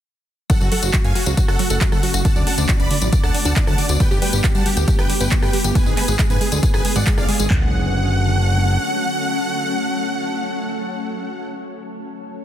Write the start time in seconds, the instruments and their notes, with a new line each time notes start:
0.50 ambient pad C#3 F#3 A3 F#4, synth arpeggio sound F#3, supersaw synth A4 F#5, kick, closed hi-hat, tambourine
0.61 analog synth bass F#1, synth arpeggio sound F#3, supersaw synth F#4, tambourine
0.72 synth arpeggio sound F#3, supersaw synth A4 F#5, open hi-hat
0.83 analog synth bass F#1, synth arpeggio sound F#4, supersaw synth F#4, closed hi-hat, tambourine
0.94 synth arpeggio sound F#3, kick, clap, closed hi-hat
1.04 analog synth bass F#2, synth arpeggio sound A3, supersaw synth F5 G#5, closed hi-hat, tambourine
1.15 synth arpeggio sound F#3, supersaw synth F#4, open hi-hat
1.26 analog synth bass C#2, synth arpeggio sound F#3, supersaw synth F#4, closed hi-hat, tambourine
1.37 synth arpeggio sound F#3, supersaw synth F#4, kick, closed hi-hat, tambourine
1.48 analog synth bass F#1, synth arpeggio sound F#4, supersaw synth A4 F#5, cross-stick, tambourine
1.59 synth arpeggio sound F#3, supersaw synth F#4, open hi-hat
1.70 analog synth bass F#1, synth arpeggio sound A3, supersaw synth A4 F#5, closed hi-hat, tambourine
1.81 synth arpeggio sound F#3, kick, clap, closed hi-hat, tambourine
1.92 analog synth bass F#1, synth arpeggio sound F#3, supersaw synth A4 F#5, cross-stick, tambourine
2.03 synth arpeggio sound F#3, supersaw synth F#4, open hi-hat
2.14 analog synth bass F#1, supersaw synth F#4, synth arpeggio sound F#4, closed hi-hat, tambourine
2.25 ambient pad D3 B3, synth arpeggio sound D3, supersaw synth F#5 A5, kick, closed hi-hat, tambourine
2.36 analog synth bass D2, synth arpeggio sound F#3, supersaw synth D5, tambourine
2.47 synth arpeggio sound D3, supersaw synth F#5 A5, open hi-hat
2.58 analog synth bass D2, synth arpeggio sound D3, supersaw synth D5, closed hi-hat, tambourine
2.69 synth arpeggio sound D3, supersaw synth D5, kick, clap, closed hi-hat, tambourine
2.80 analog synth bass D1, synth arpeggio sound D4, supersaw synth D5 B5, closed hi-hat, tambourine
2.91 synth arpeggio sound D3, supersaw synth D5, open hi-hat
3.02 analog synth bass A1, synth arpeggio sound F#3, supersaw synth D5, closed hi-hat, tambourine
3.12 synth arpeggio sound D3, supersaw synth D5, kick, closed hi-hat, tambourine
3.23 analog synth bass D2, synth arpeggio sound D3, supersaw synth F#5 A5, cross-stick, tambourine
3.34 synth arpeggio sound D3, supersaw synth D5, open hi-hat
3.45 analog synth bass D2, synth arpeggio sound D4, supersaw synth F#5 A5, closed hi-hat, tambourine
3.56 synth arpeggio sound D3, kick, clap, closed hi-hat
3.67 analog synth bass D2, synth arpeggio sound F#3, supersaw synth F#5 A5, cross-stick, tambourine
3.78 synth arpeggio sound D3, supersaw synth D5, open hi-hat
3.89 analog synth bass D2, synth arpeggio sound D3, supersaw synth D5, closed hi-hat, tambourine
4.00 synth arpeggio sound G3, ambient pad A3 G4, supersaw synth B4 G5, kick, closed hi-hat
4.11 analog synth bass G1, synth arpeggio sound G4, supersaw synth G4, tambourine
4.22 synth arpeggio sound G3, supersaw synth B4 G5, open hi-hat
4.33 analog synth bass G1, synth arpeggio sound B3, supersaw synth G4, closed hi-hat, tambourine
4.44 synth arpeggio sound G3, supersaw synth G4, kick, clap, closed hi-hat
4.55 analog synth bass G2, synth arpeggio sound G3, supersaw synth F#5 A5, closed hi-hat, tambourine
4.66 synth arpeggio sound G3, supersaw synth G4, open hi-hat
4.77 analog synth bass D2, supersaw synth G4, synth arpeggio sound G4, closed hi-hat, tambourine
4.88 synth arpeggio sound G3, supersaw synth G4, kick, closed hi-hat, tambourine
4.99 analog synth bass G1, synth arpeggio sound B3, supersaw synth B4 G5, cross-stick, tambourine
5.10 synth arpeggio sound G3, supersaw synth G4, open hi-hat
5.21 analog synth bass G1, synth arpeggio sound G3, supersaw synth B4 G5, closed hi-hat, tambourine
5.31 synth arpeggio sound G3, supersaw synth G4, kick, clap, closed hi-hat, tambourine
5.42 analog synth bass G1, synth arpeggio sound G4, supersaw synth B4 G5, cross-stick, tambourine
5.53 synth arpeggio sound G3, supersaw synth G4, open hi-hat
5.64 analog synth bass G1, synth arpeggio sound B3, supersaw synth G4, closed hi-hat, tambourine
5.75 synth arpeggio sound G#3, ambient pad G#3 G#4, supersaw synth B4 G#5, kick, closed hi-hat, tambourine
5.86 analog synth bass G#1, synth arpeggio sound G#3, supersaw synth G#4, tambourine
5.97 synth arpeggio sound G#3, supersaw synth B4 G#5, clap, open hi-hat
6.08 analog synth bass G#1, synth arpeggio sound G#4, supersaw synth G#4, closed hi-hat, tambourine
6.19 synth arpeggio sound G#3, supersaw synth G#4, kick, clap, closed hi-hat, tambourine
6.30 analog synth bass G#2, synth arpeggio sound B3, supersaw synth B4 G#5, closed hi-hat, tambourine
6.41 synth arpeggio sound G#3, supersaw synth G#4, open hi-hat
6.52 analog synth bass D2, synth arpeggio sound G#3, supersaw synth G#4, closed hi-hat, tambourine
6.63 synth arpeggio sound G#3, supersaw synth G#4, kick, closed hi-hat, tambourine
6.74 analog synth bass G#1, synth arpeggio sound G#4, supersaw synth B4 G#5, cross-stick, tambourine
6.85 synth arpeggio sound G#3, supersaw synth G#4, open hi-hat
6.96 analog synth bass G#1, synth arpeggio sound G#3, supersaw synth D5 F#5, closed hi-hat, tambourine
7.07 synth arpeggio sound G#3, supersaw synth G#4, kick, clap, closed hi-hat, tambourine
7.18 analog synth bass G#1, synth arpeggio sound G#4, supersaw synth D5 F5, cross-stick, tambourine
7.29 synth arpeggio sound G#3, supersaw synth G#4, open hi-hat
7.39 analog synth bass G#1, synth arpeggio sound G#3, supersaw synth G#4, tambourine
7.50 analog synth bass F#1, synth arpeggio sound F#3, ambient pad F#3 A3 C#4 A4, supersaw synth F#5, kick, clap, floor tom